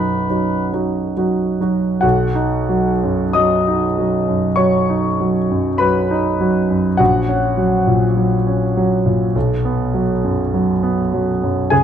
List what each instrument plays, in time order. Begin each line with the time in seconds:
Already playing: grand piano F#2 F#3 D#4 F#4, oboe B4
0.30 grand piano F#3 D#4 F#4
0.73 grand piano F#3 D#4 F#4
1.17 grand piano F#3 D#4 F#4
1.60 grand piano F#3 D#4 F#4
2.01 grand piano B1 F#4 F#5
2.35 grand piano D#4
2.69 grand piano F#3
3.04 grand piano F#2
3.33 grand piano F#3 D#5 D#6
3.68 grand piano D#4
3.98 grand piano F#3
4.28 grand piano F#2
4.56 grand piano F#3 C#5 C#6
4.90 grand piano D#4
5.21 grand piano F#3
5.51 grand piano F#2
5.78 grand piano F#3 B4 B5
6.11 grand piano D#4
6.40 grand piano F#3
6.70 grand piano F#2
6.97 grand piano A#1 F#4 F#5
7.29 grand piano C#4
7.58 grand piano F#3
7.87 grand piano A#2
8.17 grand piano F#3
8.47 grand piano C#4
8.77 grand piano F#3
9.06 grand piano A#2
9.35 grand piano B1
9.65 grand piano B3
9.94 grand piano F#3
10.24 grand piano F#2
10.54 grand piano F#3
10.83 grand piano B3
11.14 grand piano F#3
11.43 grand piano F#2
11.70 grand piano C#2 G#4 G#5